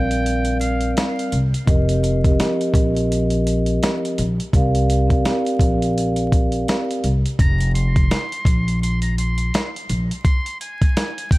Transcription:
Already playing: upright bass A#1, vibraphone G3 C4 A#4 D5 F5, muted trumpet G5
0.11 closed hi-hat
0.26 closed hi-hat
0.45 closed hi-hat
0.60 muted trumpet F5, closed hi-hat
0.81 closed hi-hat
0.97 snare, closed hi-hat
1.19 closed hi-hat
1.32 upright bass C2, closed hi-hat
1.54 closed hi-hat
1.65 upright bass F1, vibraphone F3 C4 G4 A#4 D#5, kick, closed hi-hat
1.89 closed hi-hat
2.04 closed hi-hat
2.23 vibraphone F3 C4 G4 A#4 D#5, kick, closed hi-hat
2.40 snare, closed hi-hat
2.61 closed hi-hat
2.74 upright bass A#1, kick, closed hi-hat
2.97 closed hi-hat
3.12 closed hi-hat
3.30 closed hi-hat
3.47 closed hi-hat
3.66 closed hi-hat
3.83 snare, closed hi-hat
4.05 closed hi-hat
4.18 upright bass A#1, closed hi-hat
4.40 closed hi-hat
4.53 upright bass C2, vibraphone C4 G4 A#4 D5 F5, kick, closed hi-hat
4.75 closed hi-hat
4.90 closed hi-hat
5.07 vibraphone C4 G4 A#4 D5 F5, kick, closed hi-hat
5.25 snare, closed hi-hat
5.46 closed hi-hat
5.59 upright bass A#1, kick, closed hi-hat
5.82 closed hi-hat
5.98 closed hi-hat
6.16 closed hi-hat
6.32 kick, closed hi-hat
6.52 closed hi-hat
6.68 snare, closed hi-hat
6.91 closed hi-hat
7.04 upright bass C2, closed hi-hat
7.26 closed hi-hat
7.39 upright bass F1, muted trumpet A#5, kick, closed hi-hat
7.60 closed hi-hat
7.75 muted trumpet C6, closed hi-hat
7.96 kick, closed hi-hat
8.11 snare, closed hi-hat
8.32 closed hi-hat
8.45 upright bass A#1, kick, closed hi-hat
8.68 closed hi-hat
8.82 muted trumpet C6, closed hi-hat
9.02 muted trumpet A#5, closed hi-hat
9.18 muted trumpet C6, closed hi-hat
9.38 closed hi-hat
9.54 snare, closed hi-hat
9.76 closed hi-hat
9.89 upright bass A#1, closed hi-hat
10.11 closed hi-hat
10.25 muted trumpet C6, kick, closed hi-hat
10.46 closed hi-hat
10.61 muted trumpet G#5, closed hi-hat
10.82 kick, closed hi-hat
10.97 snare, closed hi-hat
11.18 closed hi-hat
11.31 muted trumpet G5, kick, closed hi-hat

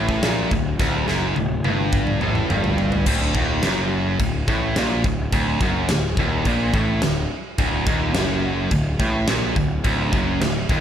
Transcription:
Already playing: picked electric bass A1, distorted electric guitar A2
0.09 kick
0.22 picked electric bass A#1, distorted electric guitar A#2, snare, crash
0.51 picked electric bass D1, distorted electric guitar D2, kick
0.79 picked electric bass D1, distorted electric guitar D2, kick, snare
1.08 picked electric bass F#1, distorted electric guitar F#2, snare
1.36 picked electric bass D1, distorted electric guitar D2, high tom
1.64 picked electric bass G1, distorted electric guitar G2, high tom
1.92 kick, mid tom
2.07 mid tom
2.21 picked electric bass A1, distorted electric guitar A2, mid tom
2.35 mid tom
2.50 picked electric bass G1, distorted electric guitar G2, mid tom
2.64 floor tom
2.78 floor tom
2.92 floor tom
3.06 picked electric bass D1, distorted electric guitar D2, kick, crash
3.35 picked electric bass D#1, distorted electric guitar D#2, kick
3.63 picked electric bass F#1, distorted electric guitar F#2, snare, crash
4.20 picked electric bass D1, distorted electric guitar D2, kick, crash
4.48 picked electric bass A1, distorted electric guitar A2, kick
4.76 picked electric bass A#1, distorted electric guitar A#2, snare, crash
5.04 picked electric bass D1, distorted electric guitar D2, kick
5.32 picked electric bass D1, distorted electric guitar D2, kick, crash
5.61 picked electric bass F#1, distorted electric guitar F#2, kick
5.89 picked electric bass D1, distorted electric guitar D2, snare, crash
6.17 picked electric bass D#1, distorted electric guitar D#2, kick
6.45 picked electric bass A#1, distorted electric guitar A#2, kick, crash
6.73 picked electric bass A1, distorted electric guitar A2, kick
7.02 picked electric bass D1, distorted electric guitar D2, snare, crash
7.58 picked electric bass D1, distorted electric guitar D2, kick, crash
7.87 picked electric bass D#1, distorted electric guitar D#2, kick
8.14 picked electric bass F#1, distorted electric guitar F#2, snare, crash
8.71 picked electric bass D1, distorted electric guitar D2, kick, crash
9.00 picked electric bass A1, distorted electric guitar A2, kick
9.28 picked electric bass A#1, distorted electric guitar A#2, snare, crash
9.56 picked electric bass D1, distorted electric guitar D2, kick
9.84 picked electric bass D1, distorted electric guitar D2, kick, crash
10.13 picked electric bass F#1, distorted electric guitar F#2, kick
10.41 picked electric bass D1, distorted electric guitar D2, snare, crash
10.69 picked electric bass D#1, distorted electric guitar D#2, kick

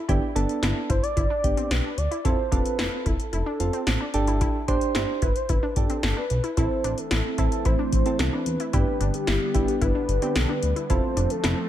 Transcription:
0.09 analog synth bass G1, synth keys B3 D4 G4, synth arpeggio sound E4, kick, closed hi-hat
0.35 analog synth bass G1, synth keys B3 D4 A4, synth arpeggio sound D4, closed hi-hat
0.49 closed hi-hat
0.63 analog synth bass G1, synth arpeggio sound E4, snare, closed hi-hat
0.90 analog synth bass G1, synth arpeggio sound E4, soft synth lead C5, kick, closed hi-hat
1.03 soft synth lead D5, closed hi-hat
1.17 analog synth bass G1, synth arpeggio sound E4, soft synth lead D5, kick, closed hi-hat
1.30 synth arpeggio sound D4
1.44 analog synth bass G1, synth keys B3 D4 G4, kick, closed hi-hat
1.57 synth arpeggio sound C4, closed hi-hat
1.71 analog synth bass B1, soft synth lead B4, snare, closed hi-hat
1.84 synth arpeggio sound D4
1.98 analog synth bass D2, soft synth lead D5, closed hi-hat
2.11 synth arpeggio sound E4, closed hi-hat
2.25 analog synth bass F1, synth keys C4 F4 A4, synth arpeggio sound E4, soft synth lead C5, kick, closed hi-hat
2.52 analog synth bass F1, synth keys C4 F4 A4, synth arpeggio sound D4, soft synth lead B4, kick, closed hi-hat
2.66 closed hi-hat
2.78 analog synth bass F1, synth arpeggio sound E4, snare, closed hi-hat
3.06 analog synth bass F1, synth arpeggio sound E4, soft synth lead A4, kick, closed hi-hat
3.20 closed hi-hat
3.33 analog synth bass F1, synth arpeggio sound E4, soft synth lead A4, closed hi-hat
3.46 synth arpeggio sound D4
3.60 analog synth bass F1, synth keys C4 F4 A4, closed hi-hat
3.73 synth arpeggio sound C4, closed hi-hat
3.87 analog synth bass A1, snare, closed hi-hat
4.00 synth arpeggio sound D4
4.14 analog synth bass G1, synth keys D4 G4 A4, closed hi-hat
4.27 synth arpeggio sound E4, closed hi-hat
4.41 synth arpeggio sound E4, kick, closed hi-hat
4.68 analog synth bass G1, synth keys D4 G4 C5, synth arpeggio sound D4, kick, closed hi-hat
4.81 closed hi-hat
4.95 analog synth bass G1, synth arpeggio sound E4, snare, closed hi-hat
5.22 analog synth bass G1, synth arpeggio sound E4, soft synth lead B4, kick, closed hi-hat
5.36 soft synth lead C5, closed hi-hat
5.49 analog synth bass G1, synth arpeggio sound E4, soft synth lead B4, kick, closed hi-hat
5.63 synth arpeggio sound D4
5.76 analog synth bass G1, synth keys D4 G4 A4, soft synth lead A4, kick, closed hi-hat
5.90 synth arpeggio sound C4, closed hi-hat
6.03 analog synth bass G1, soft synth lead A4, snare, closed hi-hat
6.17 synth arpeggio sound D4, soft synth lead B4
6.30 analog synth bass B1, closed hi-hat
6.44 synth arpeggio sound E4, closed hi-hat
6.57 analog synth bass A1, analog synth pad E3 A3 C4, synth keys C4 E4 A4, synth arpeggio sound E4, soft synth lead C5, kick, closed hi-hat
6.84 analog synth bass A1, synth arpeggio sound D4, closed hi-hat
6.98 soft synth lead A4, closed hi-hat
7.11 analog synth bass A1, synth arpeggio sound E4, snare, closed hi-hat
7.38 analog synth bass A1, synth keys C4 E4 A4, synth arpeggio sound E4, kick, closed hi-hat
7.52 soft synth lead A4, closed hi-hat
7.65 analog synth bass A1, synth arpeggio sound E4, soft synth lead C5, kick, closed hi-hat
7.79 synth arpeggio sound D4
7.92 analog synth bass A1, kick, closed hi-hat
8.06 synth arpeggio sound C4, synth keys C4 E4 A4, closed hi-hat
8.19 analog synth bass C2, soft synth lead A4, snare, closed hi-hat
8.33 synth arpeggio sound D4, soft synth lead B4
8.46 analog synth bass E2, closed hi-hat
8.60 synth arpeggio sound E4, closed hi-hat
8.73 analog synth bass G1, analog synth pad D3 G3 B3, synth keys B3 D4 G4, synth arpeggio sound E4, soft synth lead B4, kick, closed hi-hat
9.00 analog synth bass G1, synth arpeggio sound D4, closed hi-hat
9.14 soft synth lead G4, closed hi-hat
9.27 analog synth bass G1, synth arpeggio sound E4, snare, closed hi-hat
9.54 analog synth bass G1, synth keys B3 D4 G4, synth arpeggio sound E4, kick, closed hi-hat
9.68 soft synth lead G4, closed hi-hat
9.81 analog synth bass G1, synth arpeggio sound E4, soft synth lead B4, kick, closed hi-hat
9.95 synth arpeggio sound D4
10.09 analog synth bass G1, closed hi-hat
10.22 synth keys B3 D4 G4, synth arpeggio sound C4, closed hi-hat
10.36 analog synth bass B1, soft synth lead A4, snare, closed hi-hat
10.49 synth arpeggio sound D4, soft synth lead B4
10.63 analog synth bass D2, closed hi-hat
10.76 synth arpeggio sound E4, closed hi-hat
10.90 analog synth bass F1, analog synth pad F3 A3 C4, synth keys C4 F4 A4, synth arpeggio sound E4, soft synth lead C5, kick, closed hi-hat
11.17 analog synth bass F1, synth arpeggio sound D4, closed hi-hat
11.30 soft synth lead A4, closed hi-hat
11.44 analog synth bass F1, synth arpeggio sound E4, snare, closed hi-hat

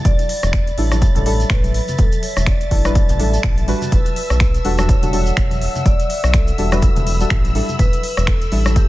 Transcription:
Already playing: ambient pad E5 B5, analog synth pad A6
0.05 analog synth bass A1, vibraphone D5, kick, closed hi-hat, high conga, shaker
0.19 closed hi-hat, shaker
0.29 open hi-hat
0.43 analog synth bass E1, cross-stick, closed hi-hat, high conga, shaker
0.53 finger snap, kick, closed hi-hat, shaker
0.67 closed hi-hat, shaker
0.77 analog synth bass A1, synth stab G3 D4 E4 A4, vibraphone C#5, open hi-hat
0.91 synth stab G3 D4 E4 A4, cross-stick, closed hi-hat, high conga, shaker
1.02 kick, closed hi-hat, shaker
1.15 analog synth bass A1, synth stab G3 D4 E4 A4, closed hi-hat, low conga, shaker
1.25 synth stab G3 D4 E4 A4, open hi-hat, high conga
1.40 closed hi-hat, shaker
1.50 analog synth bass A1, vibraphone B4, finger snap, kick, closed hi-hat, shaker
1.64 closed hi-hat, high conga, shaker
1.74 ambient pad A5, open hi-hat
1.88 closed hi-hat, low conga, shaker
1.98 analog synth bass A1, vibraphone A4, kick, closed hi-hat, high conga, shaker
2.12 closed hi-hat, shaker
2.23 vibraphone C#5, open hi-hat
2.37 analog synth bass E1, cross-stick, high conga, shaker
2.46 vibraphone D5, finger snap, kick, closed hi-hat, shaker
2.61 closed hi-hat, shaker
2.71 analog synth bass A1, synth stab G3 D4 E4 A4, kick, open hi-hat
2.85 synth stab G3 D4 E4 B4, cross-stick, high conga, shaker
2.95 kick, closed hi-hat, shaker
3.09 analog synth bass A1, closed hi-hat, low conga, shaker
3.19 synth stab G3 D4 E4 A4, open hi-hat, high conga
3.33 closed hi-hat, shaker
3.43 analog synth bass A1, finger snap, kick, closed hi-hat
3.58 closed hi-hat, high conga, shaker
3.67 synth stab G3 D4 F#4 B4, open hi-hat
3.82 closed hi-hat, low conga, shaker
3.92 analog synth bass E1, vibraphone B4, ambient pad F#5, analog synth pad E6, kick, closed hi-hat, high conga, shaker
4.06 closed hi-hat, shaker
4.16 vibraphone B4, open hi-hat
4.30 analog synth bass B1, cross-stick, high conga, shaker
4.40 finger snap, kick, closed hi-hat, shaker
4.54 closed hi-hat, shaker
4.64 analog synth bass E1, synth stab G3 D4 F#4 A4, open hi-hat
4.78 synth stab G3 D4 F#4 A4, cross-stick, closed hi-hat, high conga, shaker
4.89 vibraphone C#5, kick, closed hi-hat, shaker
5.02 analog synth bass E1, synth stab G3 D4 F#4 A4, closed hi-hat, low conga, shaker
5.12 synth stab G3 D4 F#4 A4, vibraphone C#5, open hi-hat, high conga
5.26 closed hi-hat, shaker
5.37 analog synth bass E1, finger snap, kick, closed hi-hat, shaker
5.51 closed hi-hat, high conga, shaker
5.62 open hi-hat
5.75 closed hi-hat, low conga, shaker
5.85 analog synth bass E1, vibraphone D5, ambient pad B5, kick, closed hi-hat, high conga, shaker
6.00 closed hi-hat, shaker
6.10 open hi-hat
6.23 analog synth bass B1, cross-stick, closed hi-hat, high conga, shaker
6.34 vibraphone A4, finger snap, kick, closed hi-hat, shaker
6.47 closed hi-hat, shaker
6.58 analog synth bass E1, synth stab G3 D4 F#4 A4, open hi-hat
6.72 synth stab G3 D4 F#4 B4, cross-stick, closed hi-hat, high conga, shaker
6.82 kick, closed hi-hat, shaker
6.96 analog synth bass E1, closed hi-hat, low conga, shaker
7.06 open hi-hat, high conga
7.20 synth stab G3 D4 F#4 A4, closed hi-hat, shaker
7.30 analog synth bass A1, finger snap, kick, closed hi-hat, shaker
7.45 closed hi-hat, high conga, shaker
7.55 synth stab G3 D4 E4 A4, open hi-hat
7.69 closed hi-hat, low conga, shaker
7.79 analog synth bass A1, vibraphone B4, kick, closed hi-hat, high conga, shaker
7.93 closed hi-hat, shaker
8.03 vibraphone B4, open hi-hat
8.17 analog synth bass E1, cross-stick, high conga, shaker
8.27 vibraphone A4, finger snap, kick, closed hi-hat, shaker
8.41 closed hi-hat, shaker
8.51 analog synth bass A1, synth stab G3 D4 E4 A4, open hi-hat
8.65 synth stab G3 D4 E4 A4, cross-stick, closed hi-hat, high conga, shaker
8.76 vibraphone G4, kick, closed hi-hat, shaker

